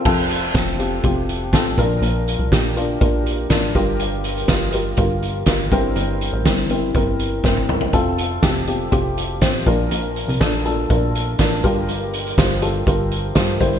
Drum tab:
CC |x---------------|----------------|----------------|----------------|
HH |--x-x-x-x-x-x-x-|x-x-x-x-x-x-x-x-|x-xxx-x-x-x-x-x-|x-x-x-x-x-x-----|
SD |----o-------o---|----o-------o---|----o-------o---|----o-------o---|
T1 |----------------|----------------|----------------|-------------o--|
T2 |----------------|----------------|----------------|--------------o-|
FT |----------------|----------------|----------------|---------------o|
BD |o---o---o---o-o-|----o---o---o-o-|----o---o---o-o-|----o---o---o---|

CC |----------------|----------------|----------------|
HH |x-x-x-x-x-x-x-x-|x-xxx-x-x-x-x-x-|x-xxx-x-x-x-x-xx|
SD |----o-------o---|----o-------o---|----o-------o---|
T1 |----------------|----------------|----------------|
T2 |----------------|----------------|----------------|
FT |----------------|----------------|----------------|
BD |o---o---o---o-o-|----o---o---o-o-|----o---o---o-o-|